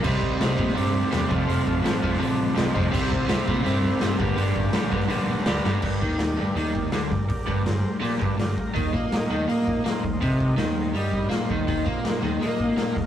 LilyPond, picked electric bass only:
\new Staff \with { instrumentName = "Picked electric bass" } { \clef bass \time 4/4 \key g \minor \tempo 4 = 165 c,8 c,8 c,8 bes,8 g,4 e,8 f,,8 | f,,8 f,,8 a,,8 f,,8 a,,4 c,8 f,,8 | c,8 c,8 c,8 bes,8 g,4 g,8 g,,8 | g,,8 g,,8 bes,,8 g,,8 bes,,4 d,8 g,,8 |
g,,8 ees,4 g,,8 ees,4 d,8 g,,8 | r8 g,,8 g,,8 r8 bes,,8 g,,8 g,,8 r8 | ees,8 bes,4 ees,8 bes,4 bes,8 ees,8 | c,4 ees,4 g,4 bes,8 ees,8 |
ees,8 bes,4 ees,8 bes,4 bes,8 ees,8 | }